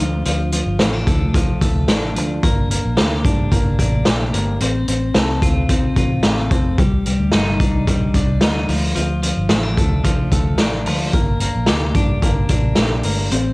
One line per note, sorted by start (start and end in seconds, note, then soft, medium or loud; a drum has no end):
0.00 0.22 D2 medium
0.00 0.25 F3 medium
0.00 0.83 D4 medium
0.25 0.60 D2 medium
0.25 0.51 F3 medium
0.25 closed hi-hat medium
0.52 1.33 F3 medium
0.52 closed hi-hat medium
0.66 0.78 G1 medium
0.79 1.03 A1 medium
0.79 0.93 C4 medium
0.79 snare loud
0.79 closed hi-hat medium
0.93 1.88 D4 soft
1.07 1.42 D2 medium
1.07 1.60 A3 medium
1.07 kick medium
1.07 closed hi-hat medium
1.34 2.14 F3 medium
1.34 kick medium
1.34 closed hi-hat medium
1.61 1.89 D2 medium
1.61 2.43 A3 medium
1.61 kick medium
1.61 closed hi-hat medium
1.88 2.18 A1 medium
1.88 3.25 D4 medium
1.88 snare loud
1.88 closed hi-hat medium
2.15 2.40 D2 medium
2.15 2.48 F3 medium
2.15 closed hi-hat medium
2.43 2.78 G1 medium
2.43 2.69 A#3 medium
2.43 kick loud
2.43 closed hi-hat medium
2.71 3.51 A#3 medium
2.71 closed hi-hat medium
2.85 2.96 A#1 medium
2.97 3.21 D2 medium
2.97 4.06 G4 medium
2.97 snare loud
2.97 closed hi-hat medium
3.25 3.48 G2 medium
3.25 3.78 D4 medium
3.25 kick medium
3.25 closed hi-hat medium
3.52 3.75 G1 medium
3.52 4.32 A#3 medium
3.52 kick medium
3.52 closed hi-hat medium
3.79 4.02 A1 medium
3.79 4.66 D4 medium
3.79 kick medium
3.79 closed hi-hat medium
4.05 4.30 A#1 medium
4.05 4.67 G4 medium
4.05 snare loud
4.05 closed hi-hat medium
4.33 4.57 G1 medium
4.33 4.61 A#3 medium
4.33 closed hi-hat medium
4.60 4.84 A1 medium
4.60 4.88 C4 medium
4.60 closed hi-hat medium
4.88 5.11 A1 medium
4.88 5.70 C4 medium
4.88 closed hi-hat medium
5.14 5.42 C2 medium
5.14 6.24 A4 medium
5.14 snare loud
5.14 closed hi-hat medium
5.42 5.77 D2 medium
5.42 5.97 F4 medium
5.42 kick medium
5.42 closed hi-hat medium
5.69 6.52 C4 medium
5.69 kick medium
5.69 closed hi-hat medium
5.96 6.20 A1 medium
5.96 6.84 F4 medium
5.96 kick medium
5.96 closed hi-hat medium
6.23 6.47 A1 medium
6.23 6.39 G4 medium
6.23 snare loud
6.23 closed hi-hat medium
6.39 6.84 A4 medium
6.51 6.74 F1 medium
6.51 6.84 C4 medium
6.51 kick medium
6.51 closed hi-hat medium
6.78 7.13 C2 medium
6.78 7.06 G3 medium
6.78 kick loud
6.78 closed hi-hat medium
7.06 7.87 G3 medium
7.06 closed hi-hat medium
7.19 7.31 D2 medium
7.32 7.56 G1 medium
7.32 8.41 D#4 medium
7.32 snare loud
7.32 closed hi-hat medium
7.60 7.87 C2 medium
7.60 8.15 D4 soft
7.60 kick medium
7.60 closed hi-hat medium
7.87 8.10 A#1 medium
7.87 8.69 G3 medium
7.87 kick medium
7.87 closed hi-hat medium
8.14 8.37 C2 medium
8.14 9.52 D4 medium
8.14 kick medium
8.14 closed hi-hat medium
8.41 8.64 D2 medium
8.41 8.74 D#4 medium
8.41 snare loud
8.41 closed hi-hat medium
8.69 8.92 D2 medium
8.69 8.94 F3 medium
8.69 open hi-hat medium
8.95 9.31 D2 medium
8.95 9.21 F3 medium
8.95 closed hi-hat medium
9.23 10.03 F3 medium
9.23 closed hi-hat medium
9.37 9.48 G1 medium
9.49 9.73 A1 medium
9.49 9.63 C4 medium
9.49 snare loud
9.49 closed hi-hat medium
9.63 10.59 D4 medium
9.77 10.12 D2 medium
9.77 10.31 A3 medium
9.77 kick medium
9.77 closed hi-hat medium
10.04 10.86 F3 medium
10.04 kick medium
10.04 closed hi-hat medium
10.31 10.60 D2 medium
10.31 11.13 A3 medium
10.31 kick medium
10.31 closed hi-hat medium
10.58 10.87 A1 medium
10.58 11.95 D4 medium
10.58 snare loud
10.58 closed hi-hat medium
10.86 11.10 D2 medium
10.86 11.20 F3 medium
10.86 open hi-hat medium
11.13 11.48 G1 medium
11.13 11.40 A#3 medium
11.13 kick medium
11.13 closed hi-hat medium
11.40 12.22 A#3 medium
11.40 closed hi-hat medium
11.56 11.67 A#1 medium
11.66 11.92 D2 medium
11.66 12.76 G4 medium
11.66 snare loud
11.66 closed hi-hat medium
11.95 12.18 G2 medium
11.95 12.49 D4 medium
11.95 kick medium
11.95 closed hi-hat medium
12.22 12.46 G1 loud
12.22 13.03 A#3 medium
12.22 kick medium
12.22 closed hi-hat medium
12.49 12.73 A1 medium
12.49 13.37 D4 medium
12.49 kick medium
12.49 closed hi-hat medium
12.75 13.00 A#1 medium
12.75 13.37 G4 medium
12.75 snare loud
12.75 closed hi-hat medium
13.03 13.27 G1 medium
13.03 13.31 A#3 soft
13.03 open hi-hat medium
13.31 13.53 A1 medium
13.31 13.53 C4 medium
13.31 closed hi-hat medium